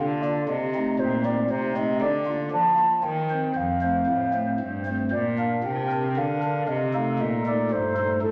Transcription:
Already playing: pipe organ D3 A#3 D4 F4, flute F5
0.00 cello D3
0.22 pipe organ A#3 D4 F4, flute D5
0.49 pipe organ C3, cello C3, flute D#5
0.75 pipe organ A3 C4 D#4
0.99 pipe organ A#2, cello A#2, flute C5
1.25 pipe organ A3 C4 D#4, flute D5
1.50 pipe organ C3, cello C3, flute C5
1.76 pipe organ A3 C4 D#4, flute D#5
2.01 pipe organ D3, cello D3, flute D5
2.26 pipe organ A#3 F4
2.51 pipe organ F3, cello F3, flute A5
2.78 pipe organ A#3 F4
3.03 pipe organ D#3, cello D#3, flute G5
3.30 pipe organ C4 C5
3.55 pipe organ F2, cello F2, flute F5
3.81 pipe organ A3 C4 C5
4.07 pipe organ A2, cello A2
4.33 pipe organ A3 C4 C5
4.60 pipe organ G2, cello G2
4.85 pipe organ A3 C4 C5
5.11 pipe organ A#2, cello A#2, flute D5
5.38 pipe organ D4 A#4, flute F5
5.64 pipe organ C3, cello C3, flute G5
5.92 pipe organ D4 A#4
6.17 pipe organ D3, cello D3, flute F5
6.43 pipe organ D4 A#4
6.68 pipe organ C3, cello C3, flute D#5
6.93 pipe organ A3 D#4 A4, flute F5
7.19 pipe organ A#2, cello A#2, flute D#5
7.46 pipe organ A3 D#4 A4, flute D5
7.71 pipe organ G2, cello G2, flute C5
7.97 pipe organ A3 D#4 A4
8.22 pipe organ A2, cello A2, flute A4

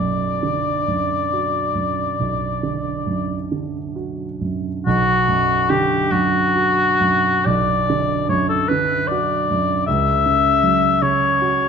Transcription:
Already playing: grand piano B1 F#2, oboe D5
0.43 grand piano D3
0.88 grand piano F#2
1.33 grand piano F#4
1.75 grand piano F#2
2.19 grand piano B1
2.63 grand piano D3
3.07 grand piano F#2
3.52 grand piano D3
3.96 grand piano F#4
4.41 grand piano F#2
4.86 grand piano B1, oboe F#4
5.28 grand piano F#2
5.70 grand piano D3, oboe G4
6.11 grand piano F#2, oboe F#4
6.56 grand piano F#4
7.01 grand piano F#2
7.46 grand piano B1, oboe D5
7.90 grand piano D3
8.29 grand piano F#2, oboe C#5
8.49 oboe A4
8.68 grand piano D3, oboe B4
9.07 grand piano F#4, oboe D5
9.51 grand piano F#2
9.86 grand piano C#2, oboe E5
10.26 grand piano C#3
10.63 grand piano F#3
11.02 grand piano C#3, oboe C#5
11.41 grand piano F#4

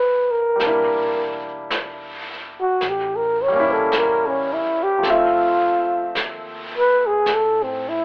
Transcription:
Already playing: upright bass E1, grand piano G3 C4 D4, flugelhorn B4
0.31 flugelhorn A#4
0.56 grand piano G3 A#3, brush sweep, snare
0.61 upright bass E1, grand piano D4
0.67 grand piano E4
1.70 brush sweep, snare, hi-hat pedal
2.61 flugelhorn F#4
2.81 upright bass A1, brush sweep, snare
2.89 flugelhorn G4
3.16 flugelhorn A#4
3.42 flugelhorn C#5
3.48 grand piano G3
3.52 grand piano A#3 C#4
3.60 grand piano E4
3.72 flugelhorn A4
3.92 brush sweep, snare, hi-hat pedal
3.98 flugelhorn A#4
4.27 flugelhorn C#4
4.53 flugelhorn E4
4.65 muted upright bass stroke
4.83 flugelhorn G4
4.99 grand piano F3 A3
5.03 upright bass D2, grand piano C4, brush sweep, snare
5.10 flugelhorn F4, grand piano E5
6.15 upright bass D#2, brush sweep, snare, hi-hat pedal
6.78 flugelhorn B4
7.06 flugelhorn G#4
7.26 upright bass A2, brush sweep, snare
7.34 flugelhorn A4
7.63 flugelhorn C4
7.89 flugelhorn E4

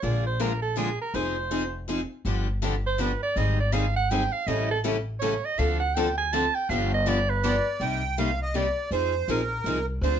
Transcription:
0.02 upright bass A#1, steel-string acoustic guitar D3 F3 G#3 A#3 D4 F4 G#4 A#4, soprano saxophone D5
0.26 soprano saxophone C5
0.40 steel-string acoustic guitar D3 F3 G#3 A#3 D4 F4 G#4 A#4, soprano saxophone A#4
0.62 soprano saxophone A4
0.76 steel-string acoustic guitar D3 F3 G#3 A#3 D4 F4 G#4 A#4, soprano saxophone G#4
1.01 soprano saxophone A#4
1.14 upright bass F1, steel-string acoustic guitar F3 C4 D#4 G#4, soprano saxophone C5
1.51 steel-string acoustic guitar F3 C4 D#4 G#4
1.88 steel-string acoustic guitar F3 C4 D#4 G#4
2.25 upright bass G1, steel-string acoustic guitar D3 F3 B3 D4 G4
2.62 steel-string acoustic guitar D3 F3 B3 D4 G4
2.86 soprano saxophone C5
2.98 steel-string acoustic guitar D3 F3 B3 D4 G4, soprano saxophone B4
3.23 soprano saxophone D5
3.36 upright bass G#1, steel-string acoustic guitar D#3 G3 C4 D#4 G#4, soprano saxophone D#5
3.60 soprano saxophone D5
3.72 steel-string acoustic guitar D#3 G3 C4 D#4 G#4, soprano saxophone F5
3.96 soprano saxophone F#5
4.10 steel-string acoustic guitar D#3 G3 C4 D#4 G#4, soprano saxophone G5
4.32 soprano saxophone F5
4.47 upright bass A1, steel-string acoustic guitar C#3 E3 G3 A3 C#4 E4 G4 A4, soprano saxophone D#5
4.71 soprano saxophone A4
4.84 steel-string acoustic guitar C#3 E3 G3 A3 C#4 E4 G4 A4
5.19 steel-string acoustic guitar C#3 E3 G3 A3 C#4 E4 G4 A4, soprano saxophone C#5
5.45 soprano saxophone D#5
5.58 upright bass D2, steel-string acoustic guitar D3 F3 C4 D4 A4, soprano saxophone F5
5.80 soprano saxophone F#5
5.94 steel-string acoustic guitar D3 F3 C4 D4 A4, soprano saxophone G5
6.18 soprano saxophone G#5
6.33 steel-string acoustic guitar D3 F3 C4 D4 A4, soprano saxophone A5
6.55 soprano saxophone G5
6.69 upright bass G1, steel-string acoustic guitar D3 F3 B3 D4 G4, soprano saxophone F5
6.94 soprano saxophone D#5
7.06 steel-string acoustic guitar D3 F3 B3 D4 G4, soprano saxophone D5
7.30 soprano saxophone B4
7.44 steel-string acoustic guitar D3 F3 B3 D4 G4, accordion D5
7.80 upright bass C2, steel-string acoustic guitar C3 G3 A#3 D#4 G4, accordion G5
8.18 steel-string acoustic guitar C3 G3 A#3 D#4 G4, accordion F5
8.42 accordion D#5
8.54 steel-string acoustic guitar C3 G3 A#3 D#4 G4, accordion D5
8.91 upright bass F2, steel-string acoustic guitar F3 C4 D#4 G#4, accordion C5
9.28 upright bass A#1, steel-string acoustic guitar F3 C4 D#4 G#4, accordion A#4
9.64 upright bass C2, steel-string acoustic guitar F3 C4 D#4 G#4
10.01 upright bass D2, steel-string acoustic guitar D3 F3 C4 D4 G#4, accordion C5

